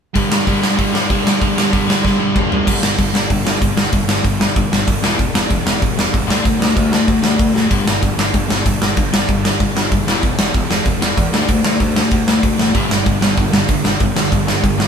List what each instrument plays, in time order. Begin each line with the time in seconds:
0.15 overdriven electric guitar G2 D3 G3, kick, open hi-hat
0.31 overdriven electric guitar G2 D3 G3, snare
0.46 overdriven electric guitar G2 D3 G3, kick, open hi-hat
0.62 overdriven electric guitar G2 D3 G3, snare
0.76 overdriven electric guitar G2 D3 G3, kick, open hi-hat
0.93 overdriven electric guitar G2 D3 G3, snare
1.10 overdriven electric guitar G2 D3 G3, kick, open hi-hat
1.25 overdriven electric guitar G2 D3 G3, snare
1.40 overdriven electric guitar G2 D3 G3, kick, open hi-hat
1.56 overdriven electric guitar G2 D3 G3, snare
1.71 overdriven electric guitar G2 D3 G3, kick, open hi-hat
1.88 overdriven electric guitar G2 D3 G3, snare
2.04 overdriven electric guitar G2 D3 G3, kick, snare
2.19 overdriven electric guitar G2 D3 G3
2.34 overdriven electric guitar G2 D3 G3, kick, mid tom
2.50 overdriven electric guitar G2 D3 G3, floor tom
2.65 picked electric bass G1, overdriven electric guitar G2 D3 G3, kick, crash
2.81 picked electric bass G1, overdriven electric guitar G2 D3, snare
2.98 picked electric bass G1, overdriven electric guitar G2 D3, kick, open hi-hat
3.13 picked electric bass G1, overdriven electric guitar G2 D3, snare
3.30 picked electric bass G1, overdriven electric guitar G2 D3, kick, open hi-hat
3.45 picked electric bass G1, overdriven electric guitar G2 D3, snare
3.61 picked electric bass G1, overdriven electric guitar G2 D3, kick, open hi-hat
3.77 picked electric bass G1, overdriven electric guitar G2 D3, snare
3.92 picked electric bass G1, overdriven electric guitar G2 D3, kick, open hi-hat
4.08 picked electric bass G1, overdriven electric guitar G2 D3, snare
4.23 picked electric bass G1, overdriven electric guitar G2 D3, kick, open hi-hat
4.40 overdriven electric guitar G2 D3, snare
4.56 picked electric bass G1, overdriven electric guitar G2 D3, kick, open hi-hat
4.72 picked electric bass G1, overdriven electric guitar G2 D3, snare
4.87 picked electric bass G1, overdriven electric guitar G2 D3, kick, open hi-hat
5.02 picked electric bass E1, overdriven electric guitar E2 B2 E3, snare
5.18 picked electric bass E1, overdriven electric guitar E2 B2, kick, open hi-hat
5.34 picked electric bass E1, overdriven electric guitar E2 B2, snare
5.49 picked electric bass E1, overdriven electric guitar E2 B2, kick, open hi-hat
5.66 picked electric bass E1, overdriven electric guitar E2 B2, snare
5.81 picked electric bass E1, overdriven electric guitar E2 B2, kick, open hi-hat
5.97 picked electric bass E1, overdriven electric guitar E2 B2, snare
6.13 picked electric bass E1, overdriven electric guitar E2 B2, kick, open hi-hat
6.27 picked electric bass D2, overdriven electric guitar D3 A3 D4, snare
6.43 picked electric bass D2, overdriven electric guitar D3 A3, kick, open hi-hat
6.59 picked electric bass D2, overdriven electric guitar D3 A3, snare
6.76 picked electric bass D2, overdriven electric guitar D3 A3, kick, open hi-hat
6.92 overdriven electric guitar D3 A3, snare
7.07 picked electric bass D2, overdriven electric guitar D3 A3, kick, open hi-hat
7.23 picked electric bass D2, overdriven electric guitar D3 A3, snare
7.39 picked electric bass D2, overdriven electric guitar D3 A3, kick, open hi-hat
7.54 picked electric bass D2, overdriven electric guitar D3 A3, snare
7.69 picked electric bass G1, overdriven electric guitar G2 D3 G3, kick, open hi-hat
7.85 picked electric bass G1, overdriven electric guitar G2 D3, snare
8.02 picked electric bass G1, overdriven electric guitar G2 D3, kick, open hi-hat
8.17 picked electric bass G1, overdriven electric guitar G2 D3, snare
8.33 picked electric bass G1, overdriven electric guitar G2 D3, kick, open hi-hat
8.49 picked electric bass G1, overdriven electric guitar G2 D3, snare
8.65 picked electric bass G1, overdriven electric guitar G2 D3, kick, open hi-hat
8.81 picked electric bass G1, overdriven electric guitar G2 D3, snare
8.97 picked electric bass G1, overdriven electric guitar G2 D3, kick, open hi-hat
9.12 picked electric bass G1, overdriven electric guitar G2 D3, snare
9.28 picked electric bass G1, overdriven electric guitar G2 D3, kick, open hi-hat
9.45 overdriven electric guitar G2 D3, snare
9.60 picked electric bass G1, overdriven electric guitar G2 D3, kick, open hi-hat
9.75 picked electric bass G1, overdriven electric guitar G2 D3, snare
9.91 picked electric bass F#1, overdriven electric guitar G2 D3, kick, open hi-hat
10.07 picked electric bass E1, overdriven electric guitar E2 B2 E3, snare
10.22 picked electric bass E1, overdriven electric guitar E2 B2, kick, open hi-hat
10.38 picked electric bass E1, overdriven electric guitar E2 B2, snare
10.54 picked electric bass E1, overdriven electric guitar E2 B2, kick, open hi-hat
10.70 picked electric bass E1, overdriven electric guitar E2 B2, snare
10.85 picked electric bass E1, overdriven electric guitar E2 B2, kick, open hi-hat
11.01 picked electric bass E1, overdriven electric guitar E2 B2, snare
11.17 overdriven electric guitar E2 B2, picked electric bass E2, kick, open hi-hat
11.33 picked electric bass D2, overdriven electric guitar D3 A3 D4, snare
11.48 picked electric bass D2, overdriven electric guitar D3 A3, kick, open hi-hat
11.64 picked electric bass D2, overdriven electric guitar D3 A3, snare
11.80 picked electric bass D2, overdriven electric guitar D3 A3, kick, open hi-hat
11.96 overdriven electric guitar D3 A3, snare
12.11 picked electric bass D2, overdriven electric guitar D3 A3, kick, open hi-hat
12.27 picked electric bass D2, overdriven electric guitar D3 A3, snare
12.43 picked electric bass D2, overdriven electric guitar D3 A3, kick, open hi-hat
12.58 picked electric bass A1, overdriven electric guitar D3 A3, snare
12.74 picked electric bass G1, overdriven electric guitar G2 D3 G3, kick, open hi-hat
12.89 picked electric bass G1, overdriven electric guitar G2 D3, snare
13.05 picked electric bass G1, overdriven electric guitar G2 D3, kick, open hi-hat
13.21 picked electric bass G1, overdriven electric guitar G2 D3, snare
13.37 picked electric bass G1, overdriven electric guitar G2 D3, kick, open hi-hat
13.52 picked electric bass G1, overdriven electric guitar G2 D3, snare
13.69 picked electric bass G1, overdriven electric guitar G2 D3, kick, open hi-hat
13.84 picked electric bass G1, overdriven electric guitar G2 D3, snare
14.00 picked electric bass G1, overdriven electric guitar G2 D3, kick, open hi-hat
14.15 picked electric bass G1, overdriven electric guitar G2 D3, snare
14.32 picked electric bass G1, overdriven electric guitar G2 D3, kick, open hi-hat
14.47 overdriven electric guitar G2 D3, snare
14.63 picked electric bass G1, overdriven electric guitar G2 D3, kick, open hi-hat
14.78 picked electric bass G1, overdriven electric guitar G2 D3, snare